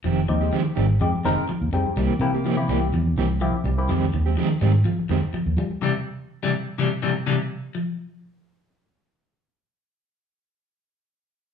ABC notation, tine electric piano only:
X:1
M:4/4
L:1/16
Q:1/4=125
K:Fm
V:1 name="Tine electric piano"
z2 [A,CEG]2 z4 [A,CEG] z [A,CEB] z3 [A,CEG] z | z2 [B,C=EG] z [EG] [B,CEG]2 z4 z [B,CEG] z2 [B,CEG] | z16 | z16 |
z16 | z16 |]